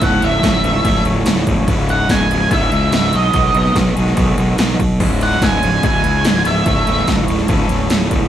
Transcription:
0.01 C#1 A2 E3 A3 C#4 E4 A4 F#5, kick, ride
0.22 C#1 E5, ride
0.43 C#1, kick, snare, ride
0.63 C#1, ride
0.83 C#1 A2 E3 A3 C#4 E4 A4, kick, ride
1.05 C#1, ride
1.26 C#1, snare, ride
1.47 C#1, kick, ride
1.66 C#1 C#2 G#2 C#3 G#3, kick, ride
1.71 E4
1.89 F#5, ride
2.09 C#1 G#5, kick, snare, ride
2.30 C#1, ride
2.50 C#1 C#2 G#2 C#3 G#3 E5, kick, ride
2.54 E4
2.71 C#2, ride
2.92 C#1, snare, ride
3.13 B1 G#2 D#3 G#3 B3 D#4 D#5, ride
3.17 G#4
3.33 B1, kick, ride
3.54 B1, ride
3.66 snare
3.75 B1, kick, snare, ride
3.96 B1 G#2 D#3 G#3 B3 D#4 G#4, ride
4.08 snare
4.17 B1, kick, ride
4.37 B1, ride
4.58 B1, snare, ride
4.79 B1, kick, ride
5.00 C#1 C#2 G#2 C#3 G#3 E4, kick, crash
5.21 F#5, ride
5.32 snare
5.41 C#1 G#5, kick, snare, ride
5.62 C#1, ride
5.83 C#1 C#2 G#2 C#3 G#3 G#5, kick, ride
5.87 E4
6.04 C#2, ride
6.25 C#1, snare, ride
6.45 C#1 E5, ride
6.65 C#1 A2 E3 A3 C#4 E4 A4, kick, ride
6.87 C#1, ride
6.98 snare
7.08 C#1, kick, snare, ride
7.28 C#1, ride
7.39 snare
7.48 C#1 A2 E3 A3 C#4 E4 A4, kick, ride
7.69 C#1, ride
7.90 C#1, snare, ride
8.11 C#1, kick, ride

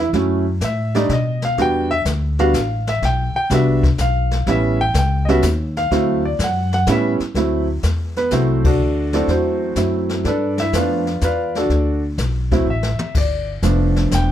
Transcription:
Already playing: E2
0.13 F#2 F#3 A3 C#4 E4, brush sweep, kick, snare
0.61 A2 E5, kick, snare, hi-hat pedal
0.95 G3 A3 D4 D#4 D5, snare
1.09 B2 D#5, kick, snare
1.42 F5, snare
1.58 E2 G3 B3 D4 F#4, brush sweep, kick, snare
1.62 G5
1.91 E5
2.05 D2, kick, snare, hi-hat pedal
2.39 G3 B3 D4 F#4 F5, snare
2.54 A1, kick, snare, hi-hat pedal
2.87 E5, snare
3.02 B1 G5, brush sweep, kick, snare
3.35 G5, muted upright bass stroke
3.50 C2 G3 B3 D4 F#4, kick, snare, hi-hat pedal
3.54 E5
3.83 kick, snare
3.98 B1 F5, kick, snare, hi-hat pedal
4.31 snare
4.47 A1 G3 B3 C#4 E4, brush sweep, kick, snare
4.51 E5
4.81 G5
4.94 C#2, kick, snare, hi-hat pedal
4.99 G5
5.25 G3 B3 C#4 D#5, snare
5.30 F#4 E5
5.42 D#2, kick, snare, hi-hat pedal
5.77 F5, snare
5.91 D2 F#3 A3 C4 E4, brush sweep, kick, snare
6.25 D5
6.39 F#2, kick, snare, hi-hat pedal
6.44 F#5
6.73 F#5, snare
6.87 A2 G3 B3 C#4 E4, kick, snare, hi-hat pedal
6.92 E5
7.20 muted upright bass stroke, snare
7.34 D2 F#3 A3 C4 E4, brush sweep, kick, snare
7.83 E2, kick, snare, hi-hat pedal
8.16 B3 B4, snare
8.31 C2 F#3 A3 C4 E4 F#4 A4 C5, kick, snare, hi-hat pedal
8.65 D4 F#4 A4 D5, kick, crash
8.79 D2, brush sweep
9.13 F#3 A3 C4 D4 E4 F#4 A4 D5, snare
9.27 E2 C4 F#4 A4 C5, kick, snare
9.76 F#2 F#3 A3 C4 E4, kick, snare, hi-hat pedal
10.09 snare
10.25 G2 D4 A4 B4 D5, brush sweep, kick, snare
10.58 E4 E5, snare
10.72 F2 F3 A3 B3 D4 B4 D5 F5, kick, snare, hi-hat pedal
10.77 F4
11.07 snare
11.21 E2 F4 B4 D5 F5, kick, snare, hi-hat pedal
11.55 D4 F#4 A4 D5, snare
11.69 D2, brush sweep, kick, snare
12.18 B1, kick, snare, hi-hat pedal
12.51 F#3 A3 C4 E4, kick, snare
12.67 A1 E5
12.83 snare
12.99 muted upright bass stroke, mid tom
13.15 G1 D5, brush sweep, kick, snare, crash
13.62 F1 F3 A3 B3 D4, kick, snare, hi-hat pedal
13.96 snare
14.11 E1 G5, kick, snare, hi-hat pedal

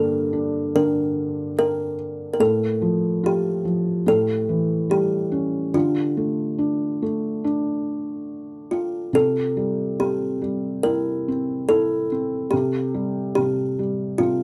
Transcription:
Already playing: G2 D3 A#3 A4
0.33 D4
0.75 D3 A#4
1.59 A#4
2.33 A#4
2.40 A2 A4
2.82 F3
3.23 F4 G4
3.65 F3
4.06 A2 A4
4.49 E3
4.90 G3 G4
5.32 C#4
5.74 D3 F4
6.17 A3
6.59 D4
7.02 A3
7.44 D4
8.71 F4
9.13 C3 A4
9.57 G3
10.00 C4 G4
10.42 G3
10.83 E4 A#4
11.28 C4
11.69 E4 A4
12.12 C4
12.51 C3 G4
12.94 G3
13.35 C3 G4
13.79 G3
14.18 C3 F4

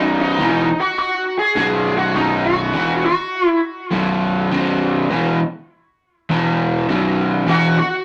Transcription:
Already playing: B1 F#2 B2 D#4
0.21 D#4
0.38 E2 B2 E3
0.50 D#4
0.80 F#4
0.99 F#4
1.39 G#4
1.56 B1 F#2 B2
1.60 G#4
1.97 F#4
2.14 B1 F#2 B2 D#4
2.45 F#4
2.73 E2 B2 E3
3.06 F#4
3.48 E4
3.92 B1 F#2 B2
4.50 B1 F#2 B2
5.10 E2 B2 E3
6.29 E2 B2 E3
6.88 B1 F#2 B2
7.47 E2 B2 E3 F#4
7.79 F#4

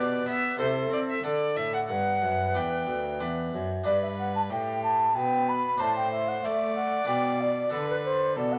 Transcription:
Already playing: B2 D4 G4 B4 D5
0.26 B3 E5
0.58 C3 E4 A4 C5
0.90 C4 D5
1.10 E5
1.23 D3 D4 A4 D5
1.56 A2 E5
1.74 F#5
1.88 G2 B4 F#5
2.22 F#2
2.54 E2 D4 B4 G5
2.87 D2
3.20 E2 D4 B4
3.54 F#2
3.84 G2 D4 B4 D5
4.02 E5
4.19 F#5
4.36 A5
4.50 A2 G4 G5
4.83 A5
5.15 B2 B4 G5
5.49 B5
5.77 A2 D4 C5 A5
5.96 G5
6.11 E5
6.28 F#5
6.43 A3 D5 E5
6.76 F#5
7.04 B2 D4 B4 G5
7.41 D5
7.70 D3 D4 A4 B4
7.90 B4
8.05 C5
8.36 B2 A4 D5
8.52 F#5

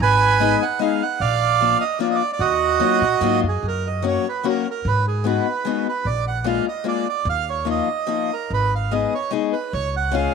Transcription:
0.00 G#1 B4 G#5
0.40 G#3 B3 D#4 G#4
0.62 F#5
0.79 G#3 B3 D#4 G#4 F5
1.02 F#5
1.20 A#1 D5 F5
1.61 F3 A#3 D4 F4
1.81 D#5
1.99 F3 A#3 D4 F4 D5
2.11 D#5
2.15 D5
2.33 D5
2.39 D#2 F#4 D#5
2.80 F#3 A#3 D#4 F4
3.01 A#2
3.21 G#2 F#3 A#3 D#4 F4
3.43 F#2
3.49 G#4
3.63 F#2
3.68 A#4
3.87 D#5
4.02 F#3 A#3 C#4 F#4
4.08 C#5
4.29 B4
4.43 F#3 A#3 C#4 F#4
4.49 A#4
4.71 A#4
4.85 G#2 B4
5.08 G#4
5.24 G#3 B3 D#4 F#4 B4
5.65 G#3 B3 D#4 F#4
5.89 B4
6.05 A#1 D5
6.28 F#5
6.44 G#3 A#3 D4 F4 F5
6.69 D#5
6.84 G#3 A#3 D4 F4
6.88 D5
7.09 D5
7.25 D#2
7.29 F5
7.50 C#5
7.65 F3 A#3 D#4 F4
7.71 D#5
8.07 F3 A#3 D#4 F4
8.33 A#4
8.50 G#1 B4
8.75 F5
8.91 G#3 B3 D#4 G#4 D#5
9.14 C#5
9.31 G#3 B3 D#4 G#4
9.53 B4
9.73 C#2 C#5
9.97 F#5
10.11 G#3 C#4 F4 G#4 F5

